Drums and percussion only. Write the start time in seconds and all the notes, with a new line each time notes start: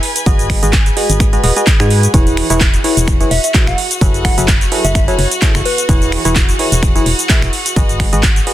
0.03 open hi-hat
0.16 closed hi-hat, cabasa
0.26 kick, closed hi-hat, cabasa
0.39 closed hi-hat, cabasa
0.50 finger snap, kick, open hi-hat
0.63 closed hi-hat, cabasa
0.73 kick, clap, closed hi-hat, cabasa
0.86 closed hi-hat, cabasa
0.97 open hi-hat
1.10 closed hi-hat, cabasa
1.20 finger snap, kick, closed hi-hat, cabasa
1.33 closed hi-hat, cabasa
1.44 open hi-hat
1.56 closed hi-hat, cabasa
1.67 kick, clap, closed hi-hat, cabasa
1.80 finger snap, cabasa
1.90 open hi-hat
2.03 closed hi-hat, cabasa
2.14 kick, closed hi-hat, cabasa
2.27 closed hi-hat, cabasa
2.37 finger snap, open hi-hat
2.50 closed hi-hat, cabasa
2.60 kick, clap, closed hi-hat, cabasa
2.74 closed hi-hat, cabasa
2.84 open hi-hat
2.97 closed hi-hat, cabasa
3.08 finger snap, kick, closed hi-hat, cabasa
3.21 closed hi-hat, cabasa
3.31 open hi-hat
3.44 closed hi-hat, cabasa
3.54 kick, clap, closed hi-hat, cabasa
3.67 finger snap, clap, cabasa
3.78 open hi-hat
3.91 closed hi-hat, cabasa
4.01 kick, closed hi-hat, cabasa
4.14 closed hi-hat, cabasa
4.25 finger snap, kick, open hi-hat
4.38 closed hi-hat, cabasa
4.48 kick, clap, closed hi-hat, cabasa
4.61 closed hi-hat, cabasa
4.72 open hi-hat
4.85 closed hi-hat, cabasa
4.95 finger snap, kick, closed hi-hat, cabasa
5.08 closed hi-hat, cabasa
5.19 open hi-hat
5.31 closed hi-hat, cabasa
5.42 kick, clap, closed hi-hat, cabasa
5.55 finger snap, cabasa
5.65 open hi-hat
5.78 closed hi-hat, cabasa
5.89 kick, closed hi-hat, cabasa
6.02 closed hi-hat, cabasa
6.12 finger snap, open hi-hat
6.25 closed hi-hat, cabasa
6.35 kick, clap, closed hi-hat, cabasa
6.49 closed hi-hat, cabasa
6.59 open hi-hat
6.72 closed hi-hat, cabasa
6.83 finger snap, kick, closed hi-hat, cabasa
6.96 closed hi-hat, cabasa
7.06 open hi-hat
7.19 closed hi-hat, cabasa
7.29 kick, clap, closed hi-hat, cabasa
7.42 finger snap, clap, cabasa
7.53 open hi-hat
7.66 closed hi-hat, cabasa
7.76 kick, closed hi-hat, cabasa
7.89 closed hi-hat, cabasa
8.00 finger snap, kick, open hi-hat
8.13 closed hi-hat, cabasa
8.23 kick, clap, closed hi-hat, cabasa
8.36 closed hi-hat, cabasa
8.47 open hi-hat